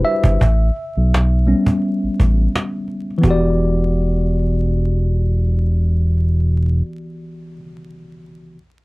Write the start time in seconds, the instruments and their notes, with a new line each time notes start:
Already playing: tine electric piano G4 B4 C5
0.05 tine electric piano E5, cajon slap
0.24 analog synth bass G1, cajon bass
0.28 cajon slap
0.41 analog synth bass A1, cajon bass
0.76 cajon slap
0.95 analog synth bass B1, cajon slap
1.14 cajon slap
1.47 tine electric piano G3 B3 C#4, cajon slap
1.66 cajon bass, cajon slap
1.82 cajon slap
2.03 analog synth bass A1
2.20 analog synth bass A1, cajon bass
2.55 cajon slap
2.88 cajon slap
3.10 cajon slap
3.18 tine electric piano E3 B3
3.23 analog synth bass E1, tine electric piano F#4, cajon bass
3.27 tine electric piano G4 D5